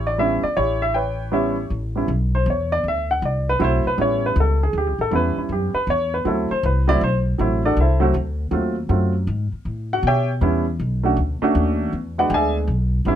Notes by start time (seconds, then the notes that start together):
Already playing: A1 E4 G4
0.07 D5
0.18 G3 B3 C#4 E4 E5
0.44 D5, muted upright bass stroke
0.57 A1 E4 G4 C#5
0.82 E5
0.94 B4 C#5 G5
1.32 G3 B3 C#4 E4 G4 C#5 E5
1.70 A1
1.96 G3 B3 C#4 E4
2.08 B1
2.35 C5
2.46 E2
2.50 C#5
2.72 D5
2.84 D2
2.88 E5
3.11 F#5
3.22 C2 D5
3.49 B4
3.59 B1 F#3 A3 C4 E4
3.64 C5
3.85 B4, muted upright bass stroke
3.98 A1 G3 B3 C#4 E4 C#5
4.26 B4
4.36 C#2
4.40 A4
4.63 G#4
4.73 D2
4.78 G4
4.86 C#2
4.99 A1 A4
5.11 E2 G3 B3 C#4 E4
5.15 B4
5.37 E4, muted upright bass stroke
5.49 F#2 G4
5.74 B4, muted upright bass stroke
5.87 E2 C#5
6.14 B4
6.25 D2 F#3 A3 C4 E4 A4
6.51 C5, muted upright bass stroke
6.63 C2 B4
6.88 F#3 A3 C4 E4 D5
7.01 B1 C5
7.38 A1 F#3 A3 C4 E4
7.65 D4 F#4 A4 D5
7.77 C2 E5
7.81 E4 A4 C5
8.00 F#3 A3 C4 F#4
8.14 D2
8.51 D#2 F#3 A3 C4 F4
8.89 F#2 F#3 A3 C4 F4
9.27 G#2
9.52 muted upright bass stroke
9.65 A2
9.93 F#4 F#5
10.03 B2
10.07 G4 C#5 E5 G5
10.41 E2 G3 B3 C#4 E4
10.79 B1
11.03 A3 C#4 D4 F#4
11.17 D2
11.42 A3 C#4 D4 F#4, muted upright bass stroke
11.55 D#2
11.93 E2
12.18 G#3 B3 D4 F#4 B4 D5 F#5
12.30 D2 G5
12.34 G#4 D5 E5 G#5
12.67 B1
13.05 A1 G3 B3 C#4 E4